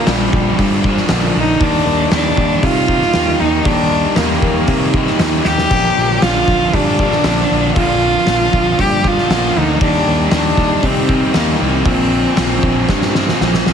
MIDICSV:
0, 0, Header, 1, 5, 480
1, 0, Start_track
1, 0, Key_signature, -2, "major"
1, 0, Tempo, 512821
1, 1513, Time_signature, 4, 2, 24, 8
1, 12852, End_track
2, 0, Start_track
2, 0, Title_t, "Cello"
2, 0, Program_c, 0, 42
2, 0, Note_on_c, 0, 58, 108
2, 87, Note_on_c, 0, 55, 97
2, 101, Note_off_c, 0, 58, 0
2, 1040, Note_off_c, 0, 55, 0
2, 1307, Note_on_c, 0, 63, 107
2, 1522, Note_on_c, 0, 62, 112
2, 1537, Note_off_c, 0, 63, 0
2, 1997, Note_off_c, 0, 62, 0
2, 2007, Note_on_c, 0, 62, 104
2, 2473, Note_on_c, 0, 65, 112
2, 2487, Note_off_c, 0, 62, 0
2, 3183, Note_on_c, 0, 63, 103
2, 3197, Note_off_c, 0, 65, 0
2, 3429, Note_on_c, 0, 62, 111
2, 3443, Note_off_c, 0, 63, 0
2, 3902, Note_on_c, 0, 58, 86
2, 3916, Note_off_c, 0, 62, 0
2, 4864, Note_off_c, 0, 58, 0
2, 5101, Note_on_c, 0, 67, 122
2, 5826, Note_on_c, 0, 65, 112
2, 5840, Note_off_c, 0, 67, 0
2, 6318, Note_on_c, 0, 62, 102
2, 6332, Note_off_c, 0, 65, 0
2, 7259, Note_off_c, 0, 62, 0
2, 7264, Note_on_c, 0, 65, 126
2, 8241, Note_on_c, 0, 67, 110
2, 8255, Note_off_c, 0, 65, 0
2, 8494, Note_on_c, 0, 65, 107
2, 8508, Note_off_c, 0, 67, 0
2, 8971, Note_on_c, 0, 63, 105
2, 8985, Note_off_c, 0, 65, 0
2, 9195, Note_off_c, 0, 63, 0
2, 9200, Note_on_c, 0, 62, 108
2, 9639, Note_off_c, 0, 62, 0
2, 9680, Note_on_c, 0, 62, 103
2, 10165, Note_on_c, 0, 60, 99
2, 10179, Note_off_c, 0, 62, 0
2, 10642, Note_on_c, 0, 58, 91
2, 10656, Note_off_c, 0, 60, 0
2, 10878, Note_on_c, 0, 60, 101
2, 10892, Note_off_c, 0, 58, 0
2, 12560, Note_off_c, 0, 60, 0
2, 12852, End_track
3, 0, Start_track
3, 0, Title_t, "Distorted electric guitar"
3, 0, Program_c, 1, 30
3, 56, Note_on_c, 1, 46, 99
3, 67, Note_on_c, 1, 50, 107
3, 72, Note_on_c, 1, 53, 110
3, 83, Note_on_c, 1, 58, 118
3, 86, Note_on_c, 1, 62, 113
3, 769, Note_off_c, 1, 62, 0
3, 780, Note_on_c, 1, 62, 85
3, 799, Note_off_c, 1, 58, 0
3, 803, Note_on_c, 1, 58, 70
3, 814, Note_off_c, 1, 53, 0
3, 818, Note_on_c, 1, 53, 64
3, 1016, Note_off_c, 1, 50, 0
3, 1024, Note_off_c, 1, 46, 0
3, 1027, Note_on_c, 1, 50, 92
3, 1039, Note_off_c, 1, 53, 0
3, 1042, Note_on_c, 1, 53, 91
3, 1043, Note_off_c, 1, 58, 0
3, 1047, Note_on_c, 1, 58, 87
3, 1050, Note_off_c, 1, 62, 0
3, 1061, Note_on_c, 1, 62, 87
3, 1252, Note_off_c, 1, 62, 0
3, 1264, Note_on_c, 1, 62, 78
3, 1281, Note_off_c, 1, 58, 0
3, 1284, Note_on_c, 1, 58, 69
3, 1292, Note_off_c, 1, 53, 0
3, 1296, Note_on_c, 1, 53, 64
3, 1493, Note_off_c, 1, 62, 0
3, 1495, Note_off_c, 1, 50, 0
3, 1502, Note_on_c, 1, 51, 99
3, 1508, Note_off_c, 1, 53, 0
3, 1512, Note_on_c, 1, 55, 109
3, 1525, Note_off_c, 1, 58, 0
3, 1529, Note_on_c, 1, 58, 106
3, 1539, Note_on_c, 1, 63, 109
3, 1975, Note_off_c, 1, 51, 0
3, 1979, Note_on_c, 1, 51, 108
3, 1983, Note_off_c, 1, 55, 0
3, 1987, Note_on_c, 1, 55, 111
3, 1995, Note_off_c, 1, 58, 0
3, 1998, Note_on_c, 1, 58, 102
3, 2004, Note_off_c, 1, 63, 0
3, 2007, Note_on_c, 1, 63, 108
3, 2679, Note_off_c, 1, 63, 0
3, 2690, Note_on_c, 1, 63, 86
3, 2708, Note_off_c, 1, 58, 0
3, 2712, Note_on_c, 1, 58, 80
3, 2717, Note_off_c, 1, 55, 0
3, 2721, Note_on_c, 1, 55, 61
3, 2922, Note_off_c, 1, 51, 0
3, 2933, Note_on_c, 1, 51, 84
3, 2943, Note_off_c, 1, 55, 0
3, 2947, Note_on_c, 1, 55, 90
3, 2956, Note_off_c, 1, 58, 0
3, 2960, Note_off_c, 1, 63, 0
3, 2960, Note_on_c, 1, 58, 89
3, 2972, Note_on_c, 1, 63, 92
3, 3177, Note_off_c, 1, 63, 0
3, 3188, Note_on_c, 1, 63, 75
3, 3201, Note_off_c, 1, 58, 0
3, 3205, Note_on_c, 1, 58, 68
3, 3215, Note_off_c, 1, 55, 0
3, 3219, Note_on_c, 1, 55, 61
3, 3406, Note_off_c, 1, 51, 0
3, 3418, Note_on_c, 1, 51, 110
3, 3425, Note_off_c, 1, 55, 0
3, 3429, Note_on_c, 1, 55, 113
3, 3434, Note_off_c, 1, 58, 0
3, 3434, Note_off_c, 1, 63, 0
3, 3438, Note_on_c, 1, 58, 112
3, 3446, Note_on_c, 1, 63, 107
3, 3894, Note_off_c, 1, 51, 0
3, 3905, Note_on_c, 1, 51, 92
3, 3913, Note_off_c, 1, 55, 0
3, 3917, Note_on_c, 1, 55, 98
3, 3920, Note_off_c, 1, 58, 0
3, 3922, Note_off_c, 1, 63, 0
3, 3923, Note_on_c, 1, 58, 114
3, 3934, Note_on_c, 1, 63, 107
3, 4614, Note_off_c, 1, 63, 0
3, 4625, Note_on_c, 1, 63, 78
3, 4638, Note_off_c, 1, 58, 0
3, 4642, Note_on_c, 1, 58, 68
3, 4654, Note_off_c, 1, 55, 0
3, 4658, Note_on_c, 1, 55, 61
3, 4841, Note_off_c, 1, 51, 0
3, 4852, Note_on_c, 1, 51, 82
3, 4866, Note_off_c, 1, 55, 0
3, 4870, Note_on_c, 1, 55, 90
3, 4875, Note_off_c, 1, 58, 0
3, 4879, Note_on_c, 1, 58, 87
3, 4880, Note_off_c, 1, 63, 0
3, 4891, Note_on_c, 1, 63, 87
3, 5085, Note_off_c, 1, 63, 0
3, 5096, Note_on_c, 1, 63, 75
3, 5114, Note_off_c, 1, 58, 0
3, 5117, Note_on_c, 1, 58, 68
3, 5129, Note_off_c, 1, 55, 0
3, 5133, Note_on_c, 1, 55, 56
3, 5325, Note_off_c, 1, 51, 0
3, 5327, Note_off_c, 1, 63, 0
3, 5353, Note_on_c, 1, 46, 109
3, 5362, Note_on_c, 1, 50, 100
3, 5366, Note_off_c, 1, 55, 0
3, 5370, Note_on_c, 1, 53, 110
3, 5374, Note_off_c, 1, 58, 0
3, 5378, Note_on_c, 1, 58, 112
3, 5386, Note_on_c, 1, 62, 105
3, 5827, Note_off_c, 1, 46, 0
3, 5831, Note_on_c, 1, 46, 93
3, 5835, Note_off_c, 1, 50, 0
3, 5846, Note_off_c, 1, 53, 0
3, 5846, Note_on_c, 1, 50, 110
3, 5850, Note_on_c, 1, 53, 105
3, 5853, Note_off_c, 1, 58, 0
3, 5857, Note_on_c, 1, 58, 110
3, 5862, Note_off_c, 1, 62, 0
3, 5865, Note_on_c, 1, 62, 109
3, 6533, Note_off_c, 1, 62, 0
3, 6545, Note_on_c, 1, 62, 79
3, 6563, Note_off_c, 1, 58, 0
3, 6567, Note_on_c, 1, 58, 72
3, 6574, Note_off_c, 1, 53, 0
3, 6578, Note_on_c, 1, 53, 66
3, 6773, Note_off_c, 1, 50, 0
3, 6784, Note_on_c, 1, 50, 92
3, 6787, Note_off_c, 1, 46, 0
3, 6789, Note_off_c, 1, 53, 0
3, 6793, Note_on_c, 1, 53, 86
3, 6804, Note_off_c, 1, 58, 0
3, 6805, Note_off_c, 1, 62, 0
3, 6808, Note_on_c, 1, 58, 95
3, 6817, Note_on_c, 1, 62, 96
3, 7015, Note_off_c, 1, 62, 0
3, 7026, Note_on_c, 1, 62, 73
3, 7041, Note_off_c, 1, 58, 0
3, 7045, Note_on_c, 1, 58, 71
3, 7058, Note_off_c, 1, 53, 0
3, 7062, Note_on_c, 1, 53, 59
3, 7255, Note_off_c, 1, 50, 0
3, 7256, Note_on_c, 1, 46, 102
3, 7266, Note_on_c, 1, 50, 105
3, 7271, Note_off_c, 1, 53, 0
3, 7275, Note_on_c, 1, 53, 104
3, 7278, Note_off_c, 1, 58, 0
3, 7278, Note_off_c, 1, 62, 0
3, 7282, Note_on_c, 1, 58, 113
3, 7289, Note_on_c, 1, 62, 107
3, 7717, Note_off_c, 1, 46, 0
3, 7728, Note_off_c, 1, 50, 0
3, 7728, Note_on_c, 1, 46, 109
3, 7739, Note_on_c, 1, 50, 104
3, 7744, Note_off_c, 1, 53, 0
3, 7748, Note_on_c, 1, 53, 110
3, 7749, Note_off_c, 1, 58, 0
3, 7750, Note_off_c, 1, 62, 0
3, 7753, Note_on_c, 1, 58, 112
3, 7761, Note_on_c, 1, 62, 111
3, 8434, Note_off_c, 1, 62, 0
3, 8445, Note_on_c, 1, 62, 77
3, 8462, Note_off_c, 1, 58, 0
3, 8466, Note_on_c, 1, 58, 68
3, 8477, Note_off_c, 1, 53, 0
3, 8481, Note_on_c, 1, 53, 65
3, 8682, Note_off_c, 1, 50, 0
3, 8693, Note_on_c, 1, 50, 88
3, 8695, Note_off_c, 1, 46, 0
3, 8703, Note_off_c, 1, 53, 0
3, 8707, Note_on_c, 1, 53, 84
3, 8718, Note_off_c, 1, 58, 0
3, 8718, Note_off_c, 1, 62, 0
3, 8721, Note_on_c, 1, 58, 96
3, 8730, Note_on_c, 1, 62, 95
3, 8911, Note_off_c, 1, 62, 0
3, 8923, Note_on_c, 1, 62, 77
3, 8946, Note_off_c, 1, 58, 0
3, 8949, Note_on_c, 1, 58, 69
3, 8953, Note_off_c, 1, 53, 0
3, 8956, Note_on_c, 1, 53, 63
3, 9149, Note_off_c, 1, 50, 0
3, 9152, Note_on_c, 1, 51, 91
3, 9158, Note_off_c, 1, 62, 0
3, 9166, Note_off_c, 1, 53, 0
3, 9169, Note_on_c, 1, 55, 97
3, 9174, Note_off_c, 1, 58, 0
3, 9177, Note_on_c, 1, 58, 114
3, 9184, Note_on_c, 1, 63, 127
3, 9633, Note_off_c, 1, 51, 0
3, 9645, Note_on_c, 1, 51, 103
3, 9646, Note_off_c, 1, 55, 0
3, 9658, Note_on_c, 1, 55, 106
3, 9669, Note_off_c, 1, 58, 0
3, 9671, Note_off_c, 1, 63, 0
3, 9673, Note_on_c, 1, 58, 113
3, 9682, Note_on_c, 1, 63, 124
3, 10354, Note_off_c, 1, 63, 0
3, 10365, Note_on_c, 1, 63, 81
3, 10376, Note_off_c, 1, 58, 0
3, 10380, Note_on_c, 1, 58, 67
3, 10389, Note_off_c, 1, 55, 0
3, 10400, Note_on_c, 1, 55, 66
3, 10595, Note_off_c, 1, 51, 0
3, 10606, Note_off_c, 1, 55, 0
3, 10606, Note_on_c, 1, 51, 78
3, 10617, Note_on_c, 1, 55, 85
3, 10622, Note_off_c, 1, 58, 0
3, 10624, Note_off_c, 1, 63, 0
3, 10625, Note_on_c, 1, 58, 90
3, 10635, Note_on_c, 1, 63, 95
3, 10828, Note_off_c, 1, 63, 0
3, 10839, Note_on_c, 1, 63, 77
3, 10853, Note_off_c, 1, 58, 0
3, 10857, Note_on_c, 1, 58, 70
3, 10862, Note_off_c, 1, 55, 0
3, 10873, Note_on_c, 1, 55, 63
3, 11078, Note_off_c, 1, 63, 0
3, 11082, Note_off_c, 1, 51, 0
3, 11087, Note_on_c, 1, 46, 103
3, 11093, Note_off_c, 1, 55, 0
3, 11097, Note_on_c, 1, 53, 103
3, 11103, Note_off_c, 1, 58, 0
3, 11107, Note_on_c, 1, 58, 114
3, 11117, Note_on_c, 1, 60, 109
3, 11561, Note_off_c, 1, 46, 0
3, 11571, Note_off_c, 1, 53, 0
3, 11572, Note_on_c, 1, 46, 99
3, 11582, Note_off_c, 1, 58, 0
3, 11582, Note_on_c, 1, 53, 94
3, 11593, Note_on_c, 1, 58, 103
3, 11596, Note_off_c, 1, 60, 0
3, 11607, Note_on_c, 1, 60, 108
3, 12294, Note_off_c, 1, 60, 0
3, 12305, Note_on_c, 1, 60, 83
3, 12309, Note_off_c, 1, 58, 0
3, 12321, Note_on_c, 1, 58, 66
3, 12325, Note_off_c, 1, 53, 0
3, 12337, Note_on_c, 1, 53, 61
3, 12534, Note_off_c, 1, 46, 0
3, 12546, Note_on_c, 1, 46, 85
3, 12548, Note_off_c, 1, 53, 0
3, 12559, Note_on_c, 1, 53, 82
3, 12560, Note_off_c, 1, 58, 0
3, 12564, Note_off_c, 1, 60, 0
3, 12571, Note_on_c, 1, 58, 84
3, 12575, Note_on_c, 1, 60, 97
3, 12781, Note_off_c, 1, 60, 0
3, 12792, Note_on_c, 1, 60, 74
3, 12800, Note_off_c, 1, 58, 0
3, 12811, Note_on_c, 1, 58, 66
3, 12813, Note_off_c, 1, 53, 0
3, 12852, Note_off_c, 1, 46, 0
3, 12852, Note_off_c, 1, 58, 0
3, 12852, Note_off_c, 1, 60, 0
3, 12852, End_track
4, 0, Start_track
4, 0, Title_t, "Picked electric bass"
4, 0, Program_c, 2, 34
4, 68, Note_on_c, 2, 34, 94
4, 252, Note_off_c, 2, 34, 0
4, 305, Note_on_c, 2, 34, 92
4, 490, Note_off_c, 2, 34, 0
4, 552, Note_on_c, 2, 43, 95
4, 916, Note_off_c, 2, 43, 0
4, 1035, Note_on_c, 2, 34, 107
4, 1216, Note_off_c, 2, 34, 0
4, 1268, Note_on_c, 2, 34, 87
4, 1452, Note_off_c, 2, 34, 0
4, 1498, Note_on_c, 2, 39, 101
4, 1686, Note_off_c, 2, 39, 0
4, 1738, Note_on_c, 2, 39, 94
4, 1926, Note_off_c, 2, 39, 0
4, 1986, Note_on_c, 2, 39, 95
4, 2170, Note_off_c, 2, 39, 0
4, 2221, Note_on_c, 2, 39, 101
4, 2407, Note_off_c, 2, 39, 0
4, 2458, Note_on_c, 2, 48, 103
4, 2827, Note_off_c, 2, 48, 0
4, 2944, Note_on_c, 2, 39, 104
4, 3129, Note_off_c, 2, 39, 0
4, 3190, Note_on_c, 2, 39, 88
4, 3372, Note_off_c, 2, 39, 0
4, 3418, Note_on_c, 2, 39, 107
4, 3787, Note_off_c, 2, 39, 0
4, 3905, Note_on_c, 2, 39, 97
4, 4089, Note_off_c, 2, 39, 0
4, 4143, Note_on_c, 2, 39, 92
4, 4327, Note_off_c, 2, 39, 0
4, 4376, Note_on_c, 2, 48, 97
4, 4745, Note_off_c, 2, 48, 0
4, 4867, Note_on_c, 2, 39, 106
4, 5049, Note_off_c, 2, 39, 0
4, 5108, Note_on_c, 2, 39, 88
4, 5290, Note_off_c, 2, 39, 0
4, 5339, Note_on_c, 2, 34, 108
4, 5524, Note_off_c, 2, 34, 0
4, 5587, Note_on_c, 2, 34, 83
4, 5769, Note_off_c, 2, 34, 0
4, 5829, Note_on_c, 2, 34, 90
4, 6010, Note_off_c, 2, 34, 0
4, 6059, Note_on_c, 2, 34, 93
4, 6244, Note_off_c, 2, 34, 0
4, 6300, Note_on_c, 2, 43, 97
4, 6666, Note_off_c, 2, 43, 0
4, 6781, Note_on_c, 2, 34, 103
4, 6964, Note_off_c, 2, 34, 0
4, 7035, Note_on_c, 2, 34, 92
4, 7213, Note_off_c, 2, 34, 0
4, 7265, Note_on_c, 2, 34, 105
4, 7629, Note_off_c, 2, 34, 0
4, 7747, Note_on_c, 2, 34, 85
4, 7928, Note_off_c, 2, 34, 0
4, 7988, Note_on_c, 2, 34, 93
4, 8168, Note_off_c, 2, 34, 0
4, 8227, Note_on_c, 2, 43, 102
4, 8590, Note_off_c, 2, 43, 0
4, 8706, Note_on_c, 2, 34, 109
4, 8887, Note_off_c, 2, 34, 0
4, 8960, Note_on_c, 2, 38, 92
4, 9136, Note_off_c, 2, 38, 0
4, 9185, Note_on_c, 2, 39, 109
4, 9367, Note_off_c, 2, 39, 0
4, 9429, Note_on_c, 2, 39, 88
4, 9609, Note_off_c, 2, 39, 0
4, 9660, Note_on_c, 2, 39, 92
4, 9843, Note_off_c, 2, 39, 0
4, 9894, Note_on_c, 2, 39, 99
4, 10080, Note_off_c, 2, 39, 0
4, 10136, Note_on_c, 2, 48, 98
4, 10504, Note_off_c, 2, 48, 0
4, 10627, Note_on_c, 2, 39, 107
4, 10808, Note_off_c, 2, 39, 0
4, 10871, Note_on_c, 2, 36, 94
4, 11051, Note_off_c, 2, 36, 0
4, 11096, Note_on_c, 2, 34, 109
4, 11466, Note_off_c, 2, 34, 0
4, 11589, Note_on_c, 2, 34, 84
4, 11771, Note_off_c, 2, 34, 0
4, 11820, Note_on_c, 2, 34, 97
4, 12007, Note_off_c, 2, 34, 0
4, 12066, Note_on_c, 2, 43, 102
4, 12434, Note_off_c, 2, 43, 0
4, 12552, Note_on_c, 2, 34, 107
4, 12736, Note_off_c, 2, 34, 0
4, 12785, Note_on_c, 2, 34, 85
4, 12852, Note_off_c, 2, 34, 0
4, 12852, End_track
5, 0, Start_track
5, 0, Title_t, "Drums"
5, 62, Note_on_c, 9, 46, 65
5, 65, Note_on_c, 9, 38, 117
5, 155, Note_off_c, 9, 46, 0
5, 158, Note_off_c, 9, 38, 0
5, 310, Note_on_c, 9, 36, 103
5, 403, Note_off_c, 9, 36, 0
5, 550, Note_on_c, 9, 36, 92
5, 553, Note_on_c, 9, 46, 70
5, 644, Note_off_c, 9, 36, 0
5, 646, Note_off_c, 9, 46, 0
5, 788, Note_on_c, 9, 36, 100
5, 882, Note_off_c, 9, 36, 0
5, 911, Note_on_c, 9, 38, 35
5, 1004, Note_off_c, 9, 38, 0
5, 1016, Note_on_c, 9, 46, 65
5, 1019, Note_on_c, 9, 38, 108
5, 1109, Note_off_c, 9, 46, 0
5, 1112, Note_off_c, 9, 38, 0
5, 1502, Note_on_c, 9, 46, 72
5, 1505, Note_on_c, 9, 36, 117
5, 1596, Note_off_c, 9, 46, 0
5, 1598, Note_off_c, 9, 36, 0
5, 1978, Note_on_c, 9, 46, 72
5, 1981, Note_on_c, 9, 38, 110
5, 2072, Note_off_c, 9, 46, 0
5, 2075, Note_off_c, 9, 38, 0
5, 2222, Note_on_c, 9, 36, 96
5, 2316, Note_off_c, 9, 36, 0
5, 2462, Note_on_c, 9, 36, 99
5, 2464, Note_on_c, 9, 46, 74
5, 2556, Note_off_c, 9, 36, 0
5, 2558, Note_off_c, 9, 46, 0
5, 2700, Note_on_c, 9, 36, 98
5, 2793, Note_off_c, 9, 36, 0
5, 2821, Note_on_c, 9, 38, 35
5, 2915, Note_off_c, 9, 38, 0
5, 2933, Note_on_c, 9, 46, 64
5, 2936, Note_on_c, 9, 38, 111
5, 3027, Note_off_c, 9, 46, 0
5, 3029, Note_off_c, 9, 38, 0
5, 3419, Note_on_c, 9, 46, 69
5, 3420, Note_on_c, 9, 36, 123
5, 3512, Note_off_c, 9, 46, 0
5, 3514, Note_off_c, 9, 36, 0
5, 3894, Note_on_c, 9, 46, 64
5, 3897, Note_on_c, 9, 38, 115
5, 3987, Note_off_c, 9, 46, 0
5, 3990, Note_off_c, 9, 38, 0
5, 4141, Note_on_c, 9, 36, 96
5, 4234, Note_off_c, 9, 36, 0
5, 4376, Note_on_c, 9, 46, 64
5, 4380, Note_on_c, 9, 36, 92
5, 4469, Note_off_c, 9, 46, 0
5, 4473, Note_off_c, 9, 36, 0
5, 4622, Note_on_c, 9, 36, 98
5, 4715, Note_off_c, 9, 36, 0
5, 4744, Note_on_c, 9, 38, 38
5, 4838, Note_off_c, 9, 38, 0
5, 4860, Note_on_c, 9, 46, 62
5, 4863, Note_on_c, 9, 38, 113
5, 4954, Note_off_c, 9, 46, 0
5, 4957, Note_off_c, 9, 38, 0
5, 5101, Note_on_c, 9, 38, 72
5, 5194, Note_off_c, 9, 38, 0
5, 5227, Note_on_c, 9, 38, 95
5, 5320, Note_off_c, 9, 38, 0
5, 5341, Note_on_c, 9, 46, 73
5, 5341, Note_on_c, 9, 49, 114
5, 5344, Note_on_c, 9, 36, 121
5, 5434, Note_off_c, 9, 46, 0
5, 5434, Note_off_c, 9, 49, 0
5, 5438, Note_off_c, 9, 36, 0
5, 5822, Note_on_c, 9, 46, 70
5, 5825, Note_on_c, 9, 38, 121
5, 5916, Note_off_c, 9, 46, 0
5, 5919, Note_off_c, 9, 38, 0
5, 6063, Note_on_c, 9, 36, 94
5, 6157, Note_off_c, 9, 36, 0
5, 6304, Note_on_c, 9, 36, 90
5, 6305, Note_on_c, 9, 46, 70
5, 6398, Note_off_c, 9, 36, 0
5, 6399, Note_off_c, 9, 46, 0
5, 6544, Note_on_c, 9, 36, 98
5, 6637, Note_off_c, 9, 36, 0
5, 6661, Note_on_c, 9, 38, 35
5, 6754, Note_off_c, 9, 38, 0
5, 6777, Note_on_c, 9, 46, 67
5, 6779, Note_on_c, 9, 38, 106
5, 6870, Note_off_c, 9, 46, 0
5, 6873, Note_off_c, 9, 38, 0
5, 7263, Note_on_c, 9, 46, 63
5, 7265, Note_on_c, 9, 36, 117
5, 7356, Note_off_c, 9, 46, 0
5, 7359, Note_off_c, 9, 36, 0
5, 7736, Note_on_c, 9, 46, 67
5, 7739, Note_on_c, 9, 38, 110
5, 7830, Note_off_c, 9, 46, 0
5, 7833, Note_off_c, 9, 38, 0
5, 7986, Note_on_c, 9, 36, 102
5, 8079, Note_off_c, 9, 36, 0
5, 8225, Note_on_c, 9, 46, 68
5, 8226, Note_on_c, 9, 36, 89
5, 8319, Note_off_c, 9, 46, 0
5, 8320, Note_off_c, 9, 36, 0
5, 8465, Note_on_c, 9, 36, 107
5, 8558, Note_off_c, 9, 36, 0
5, 8595, Note_on_c, 9, 38, 35
5, 8689, Note_off_c, 9, 38, 0
5, 8709, Note_on_c, 9, 46, 64
5, 8711, Note_on_c, 9, 38, 107
5, 8802, Note_off_c, 9, 46, 0
5, 8805, Note_off_c, 9, 38, 0
5, 9182, Note_on_c, 9, 36, 123
5, 9182, Note_on_c, 9, 46, 71
5, 9276, Note_off_c, 9, 36, 0
5, 9276, Note_off_c, 9, 46, 0
5, 9652, Note_on_c, 9, 46, 71
5, 9655, Note_on_c, 9, 38, 120
5, 9746, Note_off_c, 9, 46, 0
5, 9749, Note_off_c, 9, 38, 0
5, 9898, Note_on_c, 9, 36, 93
5, 9991, Note_off_c, 9, 36, 0
5, 10135, Note_on_c, 9, 46, 70
5, 10137, Note_on_c, 9, 36, 94
5, 10229, Note_off_c, 9, 46, 0
5, 10230, Note_off_c, 9, 36, 0
5, 10380, Note_on_c, 9, 36, 105
5, 10473, Note_off_c, 9, 36, 0
5, 10614, Note_on_c, 9, 46, 64
5, 10617, Note_on_c, 9, 38, 106
5, 10708, Note_off_c, 9, 46, 0
5, 10711, Note_off_c, 9, 38, 0
5, 11093, Note_on_c, 9, 46, 74
5, 11097, Note_on_c, 9, 36, 124
5, 11187, Note_off_c, 9, 46, 0
5, 11190, Note_off_c, 9, 36, 0
5, 11577, Note_on_c, 9, 46, 70
5, 11579, Note_on_c, 9, 38, 114
5, 11670, Note_off_c, 9, 46, 0
5, 11673, Note_off_c, 9, 38, 0
5, 11822, Note_on_c, 9, 36, 92
5, 11915, Note_off_c, 9, 36, 0
5, 12060, Note_on_c, 9, 38, 66
5, 12062, Note_on_c, 9, 36, 97
5, 12154, Note_off_c, 9, 38, 0
5, 12155, Note_off_c, 9, 36, 0
5, 12183, Note_on_c, 9, 38, 64
5, 12277, Note_off_c, 9, 38, 0
5, 12309, Note_on_c, 9, 38, 87
5, 12403, Note_off_c, 9, 38, 0
5, 12437, Note_on_c, 9, 38, 81
5, 12530, Note_off_c, 9, 38, 0
5, 12551, Note_on_c, 9, 38, 88
5, 12645, Note_off_c, 9, 38, 0
5, 12674, Note_on_c, 9, 38, 91
5, 12767, Note_off_c, 9, 38, 0
5, 12790, Note_on_c, 9, 38, 113
5, 12852, Note_off_c, 9, 38, 0
5, 12852, End_track
0, 0, End_of_file